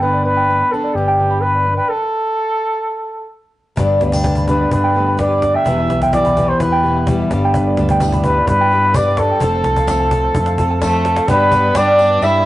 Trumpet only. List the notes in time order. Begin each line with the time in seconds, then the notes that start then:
0.01 B4
0.25 B4
0.71 A4
0.94 G4
1.42 B4
1.77 B4
1.89 A4
4.47 B4
4.72 B4
5.20 D5
5.55 E5
6.02 E5
6.13 D5
6.49 C5
6.60 B4
8.24 B4
8.48 B4
8.95 D5
9.18 A4
10.82 A4
11.29 B4
11.77 D5
12.23 E5